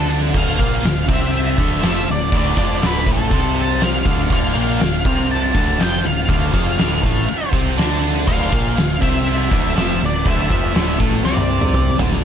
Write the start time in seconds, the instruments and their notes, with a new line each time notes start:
Already playing: picked electric bass D2, overdriven electric guitar D3 D4
0.10 ride
0.34 picked electric bass D1, overdriven electric guitar D2 D3, lead electric guitar F5, kick, crash
0.59 picked electric bass A#1, overdriven electric guitar A#2 A#3, kick, ride
0.82 picked electric bass D1, overdriven electric guitar D2, snare, ride
1.09 picked electric bass C2, overdriven electric guitar C3 C4, kick, ride
1.13 lead electric guitar E5
1.34 ride
1.58 picked electric bass D1, overdriven electric guitar D2 D3, kick, ride
1.82 picked electric bass F1, overdriven electric guitar F2 F3, snare, ride
2.08 picked electric bass D1, overdriven electric guitar D2, lead electric guitar D5, ride
2.32 picked electric bass D1, overdriven electric guitar D2 D3, kick, ride
2.38 lead electric guitar D5
2.57 picked electric bass F1, overdriven electric guitar F2 F3, kick, ride
2.82 picked electric bass D1, overdriven electric guitar D2 D3, snare, ride
2.86 lead electric guitar B4
3.06 picked electric bass A1, overdriven electric guitar A2 A3, kick, ride
3.13 lead electric guitar A4
3.31 picked electric bass C2, overdriven electric guitar C3 C4, kick, ride
3.56 ride
3.60 lead electric guitar A5
3.81 lead electric guitar F5, snare, ride
4.05 picked electric bass D1, overdriven electric guitar D2 D3, kick, ride
4.30 picked electric bass D1, overdriven electric guitar D2 D3, lead electric guitar F5, kick, crash
4.55 picked electric bass A#1, overdriven electric guitar A#2 A#3, ride
4.80 picked electric bass D1, overdriven electric guitar D2, snare, ride
5.05 picked electric bass C2, overdriven electric guitar C3 C4, kick, ride
5.31 lead electric guitar A5, ride
5.54 picked electric bass D1, overdriven electric guitar D2 D3, kick, ride
5.80 picked electric bass F1, overdriven electric guitar F2 F3, lead electric guitar G5, snare, ride
6.04 picked electric bass D1, overdriven electric guitar D2, lead electric guitar F5, ride
6.28 picked electric bass D1, overdriven electric guitar D2 D3, kick, ride
6.53 picked electric bass F1, overdriven electric guitar F2 F3, kick, ride
6.78 picked electric bass D1, overdriven electric guitar D2 D3, snare, ride
7.03 picked electric bass A1, overdriven electric guitar A2 A3, kick, ride
7.26 muted distorted electric guitar stroke, muted picked electric bass stroke, muted overdriven electric guitar stroke, ride
7.52 picked electric bass C2, overdriven electric guitar C3 C4, kick, ride
7.78 picked electric bass D2, overdriven electric guitar D3 D4, snare, ride
8.03 ride
8.27 picked electric bass D1, overdriven electric guitar D2 D3, lead electric guitar F5, kick, crash
8.51 picked electric bass A#1, overdriven electric guitar A#2 A#3, kick, ride
8.77 picked electric bass D1, overdriven electric guitar D2, snare, ride
9.01 picked electric bass C2, overdriven electric guitar C3 C4, lead electric guitar E5, kick, ride
9.27 ride
9.50 picked electric bass D1, overdriven electric guitar D2 D3, kick, ride
9.75 picked electric bass F1, overdriven electric guitar F2 F3, snare, ride
10.01 picked electric bass D1, overdriven electric guitar D2, ride
10.06 lead electric guitar D5
10.25 picked electric bass D1, overdriven electric guitar D2 D3, lead electric guitar E5, kick, ride
10.50 picked electric bass F1, overdriven electric guitar F2 F3, kick, ride
10.73 picked electric bass D1, overdriven electric guitar D2 D3, snare, ride
10.99 picked electric bass A1, overdriven electric guitar A2 A3, kick, ride
11.25 picked electric bass C2, overdriven electric guitar C3 C4, lead electric guitar D5, snare
11.37 high tom
11.61 mid tom
11.74 mid tom
11.98 picked electric bass D1, overdriven electric guitar D2 D3, floor tom
12.13 snare